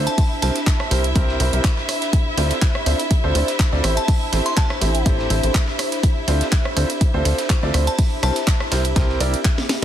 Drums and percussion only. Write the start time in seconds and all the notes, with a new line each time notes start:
0.07 closed hi-hat
0.18 kick, closed hi-hat, open hi-hat, ride
0.42 snare, closed hi-hat, open hi-hat, ride
0.55 snare, closed hi-hat
0.67 kick, snare, clap, closed hi-hat, ride
0.80 cross-stick, snare
0.91 closed hi-hat, open hi-hat, ride
1.04 closed hi-hat
1.16 kick, closed hi-hat, ride
1.29 snare
1.40 closed hi-hat, open hi-hat, ride
1.53 closed hi-hat
1.64 kick, snare, clap, closed hi-hat, ride
1.77 snare
1.89 cross-stick, closed hi-hat, open hi-hat, ride
2.02 snare, closed hi-hat
2.13 kick, closed hi-hat, ride
2.37 snare, closed hi-hat, open hi-hat, ride
2.51 snare, closed hi-hat
2.62 kick, snare, clap, closed hi-hat, ride
2.75 cross-stick
2.86 closed hi-hat, open hi-hat, ride
2.99 closed hi-hat
3.11 kick, closed hi-hat, ride
3.35 closed hi-hat, open hi-hat, ride
3.48 snare, closed hi-hat
3.59 kick, snare, clap, closed hi-hat, ride
3.73 snare
3.84 cross-stick, closed hi-hat, open hi-hat, ride
3.97 closed hi-hat
4.08 kick, closed hi-hat, open hi-hat, ride
4.33 snare, closed hi-hat, open hi-hat, ride
4.46 snare, closed hi-hat
4.57 kick, snare, clap, closed hi-hat, ride
4.70 cross-stick, snare
4.81 closed hi-hat, open hi-hat, ride
4.95 closed hi-hat
5.06 kick, closed hi-hat, ride
5.19 snare
5.30 closed hi-hat, open hi-hat, ride
5.43 closed hi-hat
5.55 kick, snare, clap, closed hi-hat, ride
5.68 snare
5.79 cross-stick, closed hi-hat, open hi-hat, ride
5.92 snare, closed hi-hat
6.03 kick, closed hi-hat, ride
6.28 snare, closed hi-hat, open hi-hat, ride
6.41 snare, closed hi-hat
6.52 kick, snare, clap, closed hi-hat, ride
6.65 cross-stick
6.77 closed hi-hat, open hi-hat, ride
6.90 closed hi-hat
7.01 kick, closed hi-hat, ride
7.25 closed hi-hat, open hi-hat, ride
7.38 snare, closed hi-hat
7.50 kick, snare, clap, closed hi-hat, ride
7.63 snare
7.74 cross-stick, closed hi-hat, open hi-hat, ride
7.87 closed hi-hat
7.99 kick, closed hi-hat, open hi-hat, ride
8.23 cross-stick, snare, closed hi-hat, open hi-hat, ride
8.36 snare, closed hi-hat
8.47 kick, snare, clap, closed hi-hat, ride
8.60 cross-stick, snare
8.72 snare, closed hi-hat, open hi-hat, ride
8.85 closed hi-hat
8.96 kick, snare, closed hi-hat, ride
9.09 snare
9.20 closed hi-hat, open hi-hat, ride
9.34 closed hi-hat
9.45 kick, snare, clap, closed hi-hat, ride
9.58 snare
9.69 snare, open hi-hat, ride